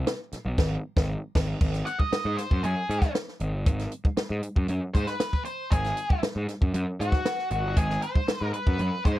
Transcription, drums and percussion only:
0.07 snare, closed hi-hat
0.32 snare, closed hi-hat
0.58 kick, snare, crash
0.97 kick, snare
1.35 kick, snare, crash
1.61 kick, crash
1.74 snare, closed hi-hat
1.86 closed hi-hat
2.00 kick
2.12 snare, closed hi-hat
2.38 snare, closed hi-hat
2.51 kick
2.63 closed hi-hat
2.91 closed hi-hat
3.02 kick, snare, closed hi-hat
3.15 snare, closed hi-hat
3.28 snare
3.40 closed hi-hat
3.66 kick, closed hi-hat
3.79 snare, closed hi-hat
3.92 closed hi-hat
4.05 kick
4.17 snare, closed hi-hat
4.43 closed hi-hat
4.56 kick
4.68 closed hi-hat
4.95 kick, closed hi-hat
5.07 snare, closed hi-hat
5.20 snare, closed hi-hat
5.33 kick, snare
5.45 closed hi-hat
5.72 kick, closed hi-hat
5.84 snare, closed hi-hat
5.97 closed hi-hat
6.10 kick
6.23 snare, closed hi-hat
6.48 snare, closed hi-hat
6.62 kick
6.74 closed hi-hat
7.01 closed hi-hat
7.12 kick, snare
7.25 snare, closed hi-hat
7.39 snare
7.50 closed hi-hat
7.77 kick, closed hi-hat
7.90 snare
8.02 closed hi-hat
8.15 kick
8.28 snare, closed hi-hat
8.54 closed hi-hat
8.67 kick
8.79 closed hi-hat
9.05 kick, closed hi-hat

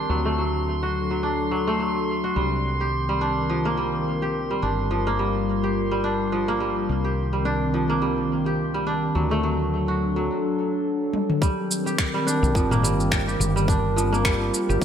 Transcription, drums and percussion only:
11.13 high tom
11.30 mid tom
11.42 kick, shaker
11.71 shaker
11.87 shaker
11.98 finger snap, kick, shaker
12.28 shaker
12.44 shaker
12.55 kick, shaker
12.71 mid tom, shaker
12.85 shaker
13.00 shaker
13.12 finger snap, kick, shaker
13.29 shaker
13.41 shaker
13.57 shaker
13.68 kick, shaker
13.98 shaker
14.14 shaker
14.25 finger snap, kick, shaker
14.54 shaker
14.70 shaker
14.82 kick

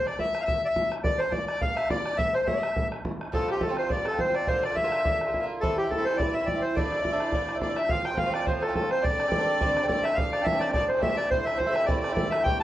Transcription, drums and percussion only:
0.07 bodhran
0.19 bodhran
0.35 bodhran
0.48 bodhran
0.76 bodhran
0.92 bodhran
1.04 bodhran
1.20 bodhran
1.32 bodhran
1.49 bodhran
1.62 bodhran
1.77 bodhran
1.90 bodhran
2.06 bodhran
2.19 bodhran
2.35 bodhran
2.48 bodhran
2.63 bodhran
2.77 bodhran
2.92 bodhran
3.05 bodhran
3.21 bodhran
3.34 bodhran
3.48 bodhran
3.61 bodhran
3.77 bodhran
3.90 bodhran
4.06 bodhran
4.19 bodhran
4.34 bodhran
4.47 bodhran
4.63 bodhran
4.76 bodhran
4.92 bodhran
5.05 bodhran
5.21 bodhran
5.34 bodhran
5.63 bodhran
5.78 bodhran
5.91 bodhran
6.07 bodhran
6.19 bodhran
6.48 bodhran
6.77 bodhran
6.92 bodhran
7.05 bodhran
7.20 bodhran
7.32 bodhran
7.49 bodhran
7.61 bodhran
7.76 bodhran
7.89 bodhran
8.05 bodhran
8.17 bodhran
8.34 bodhran
8.47 bodhran
8.62 bodhran
8.75 bodhran
8.91 bodhran
9.04 bodhran
9.20 bodhran
9.32 bodhran
9.61 bodhran
9.77 bodhran
9.89 bodhran
10.05 bodhran
10.18 bodhran
10.33 bodhran
10.47 bodhran
10.61 bodhran
10.74 bodhran
10.90 bodhran
11.03 bodhran
11.18 bodhran
11.31 bodhran
11.47 bodhran
11.60 bodhran
11.76 bodhran
11.88 bodhran
12.04 bodhran
12.17 bodhran
12.32 bodhran
12.46 bodhran

